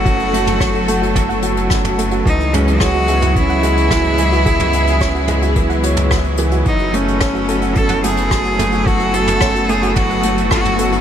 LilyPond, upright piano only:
\new Staff \with { instrumentName = "Upright piano" } { \time 4/4 \key fis \minor \tempo 4 = 109 cis'8 a8 fis8 a8 a'8 fis'8 cis'8 a8 | e8 gis8 gis'8 e'8 cis'8 gis8 e8 gis8 | gis'8 e'8 cis'8 gis8 e8 cis''8 gis'8 e8 | fis8 a8 a'8 fis'8 cis'8 a8 fis8 a8 |
a'8 fis'8 cis'8 a8 fis8 a8 a'8 fis'8 | }